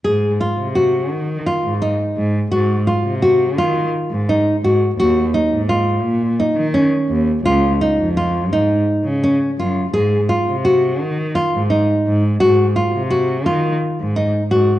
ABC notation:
X:1
M:7/8
L:1/16
Q:1/4=85
K:Abmix
V:1 name="Nylon-string guitar"
A2 F2 G4 F2 E4 | G2 F2 G2 F4 E2 G2 | G2 E2 F4 E2 D4 | F2 E2 F2 E4 D2 F2 |
A2 F2 G4 F2 E4 | G2 F2 G2 F4 E2 G2 |]
V:2 name="Cello" clef=bass
A,,2 z C,3 E,2 z A,,2 z A,,2 | A,,2 z C,3 E,2 z A,,2 z A,,2 | E,,2 z A,,3 B,,2 z E,2 z E,,2 | D,,2 z F,,3 A,,2 z D,2 z G,,2 |
A,,2 z C,3 E,2 z A,,2 z A,,2 | A,,2 z C,3 E,2 z A,,2 z A,,2 |]